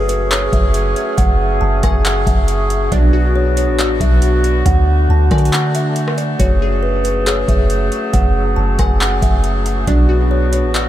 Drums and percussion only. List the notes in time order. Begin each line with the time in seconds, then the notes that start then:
0.09 closed hi-hat
0.31 clap, closed hi-hat
0.53 kick, closed hi-hat
0.74 closed hi-hat
0.96 closed hi-hat
1.18 kick, closed hi-hat
1.83 kick, cross-stick, closed hi-hat
2.05 clap, closed hi-hat
2.27 kick, closed hi-hat
2.48 closed hi-hat
2.70 closed hi-hat
2.92 kick, closed hi-hat
3.57 closed hi-hat
3.79 clap, closed hi-hat
4.00 kick, closed hi-hat
4.22 closed hi-hat
4.44 closed hi-hat
4.66 kick, closed hi-hat
5.31 kick, cross-stick, closed hi-hat
5.38 closed hi-hat
5.45 closed hi-hat
5.53 clap, closed hi-hat
5.75 closed hi-hat
5.96 closed hi-hat
6.08 cross-stick
6.18 closed hi-hat
6.40 kick, closed hi-hat
7.05 closed hi-hat
7.27 clap, closed hi-hat
7.48 kick, closed hi-hat
7.70 closed hi-hat
7.92 closed hi-hat
8.14 kick, closed hi-hat
8.79 kick, cross-stick, closed hi-hat
9.01 clap, closed hi-hat
9.22 kick, closed hi-hat
9.44 closed hi-hat
9.66 closed hi-hat
9.87 kick, closed hi-hat
10.53 closed hi-hat
10.75 clap, closed hi-hat